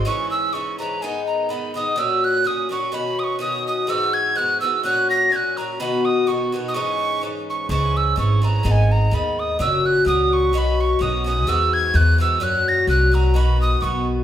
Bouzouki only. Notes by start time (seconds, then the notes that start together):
0.05 G#2 E3 C#4 E4
0.53 G#2 E3 C#4 E4
0.79 G#2 E3 C#4 E4
1.02 G#2 D#3 B3 D#4
1.49 G#2 D#3 B3 D#4
1.74 G#2 D#3 B3 D#4
1.96 A#2 F#3 C#4 F#4
2.44 A#2 F#3 C#4 F#4
2.69 A#2 F#3 C#4 F#4
2.92 B2 D#3 C#4 F#4
3.39 B2 D#3 C#4 F#4
3.87 G#2 E3 B3 F#4
4.35 G#2 E3 B3 F#4
4.61 G#2 E3 B3 F#4
4.83 A#2 F#3 C#4 F#4
5.30 A#2 F#3 C#4 F#4
5.57 A#2 F#3 C#4 F#4
5.80 B2 D#3 B3 F#4
6.27 B2 D#3 B3 F#4
6.52 B2 D#3 B3 F#4
6.74 G#2 E3 C#4 D#4
7.21 G#2 E3 C#4 D#4
7.69 G#2 E3 C#4 E4
8.16 G#2 E3 C#4 E4
8.42 G#2 E3 C#4 E4
8.63 G#2 D#3 B3 D#4
9.11 G#2 D#3 B3 D#4
9.59 A#2 F#3 C#4 F#4
10.05 A#2 F#3 C#4 F#4
10.53 B2 D#3 C#4 F#4
10.99 B2 D#3 C#4 F#4
11.24 B2 D#3 C#4 F#4
11.47 G#2 E3 B3 F#4
11.94 G#2 E3 B3 F#4
12.18 G#2 E3 B3 F#4
12.40 A#2 F#3 C#4 F#4
12.87 A#2 F#3 C#4 F#4
13.12 A#2 F#3 C#4 F#4
13.34 B2 D#3 B3 F#4
13.81 B2 D#3 B3 F#4